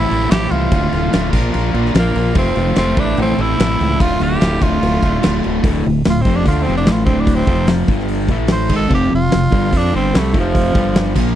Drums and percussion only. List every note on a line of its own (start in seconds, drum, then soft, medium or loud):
0.11 crash soft
0.31 snare loud
0.31 crash medium
0.51 crash medium
0.72 kick loud
0.72 crash medium
0.92 snare soft
0.92 crash medium
1.13 snare loud
1.13 crash medium
1.33 kick loud
1.33 crash loud
1.54 crash medium
1.75 crash medium
1.86 snare soft
1.95 snare loud
1.95 crash medium
2.15 crash medium
2.35 kick loud
2.35 crash medium
2.56 snare soft
2.56 crash medium
2.76 snare loud
2.76 crash medium
2.97 kick loud
2.97 crash medium
3.17 crash medium
3.38 crash medium
3.60 snare loud
3.60 crash medium
3.81 crash medium
4.00 kick loud
4.00 crash medium
4.21 crash medium
4.41 snare loud
4.41 crash medium
4.62 kick loud
4.62 crash medium
4.83 crash medium
5.03 kick medium
5.03 crash medium
5.23 snare loud
5.23 crash medium
5.44 crash medium
5.64 kick loud
5.64 open hi-hat medium
6.05 snare loud
6.05 open hi-hat medium
6.25 kick loud
6.46 kick loud
6.46 open hi-hat medium
6.86 snare loud
6.86 open hi-hat medium
7.07 kick loud
7.27 kick loud
7.27 open hi-hat medium
7.47 kick loud
7.67 snare loud
7.67 open hi-hat medium
7.88 kick loud
7.99 snare soft
8.08 open hi-hat medium
8.28 kick loud
8.47 snare loud
8.47 open hi-hat medium
8.69 kick loud
8.69 crash loud
8.91 kick loud
9.31 snare loud
9.31 open hi-hat medium
9.52 kick loud
9.73 kick medium
9.73 open hi-hat medium
10.14 snare loud
10.14 open hi-hat medium
10.34 kick loud
10.55 kick loud
10.55 open hi-hat medium
10.75 kick loud
10.95 snare loud
10.95 open hi-hat medium
11.16 kick medium
11.16 crash loud
11.27 snare soft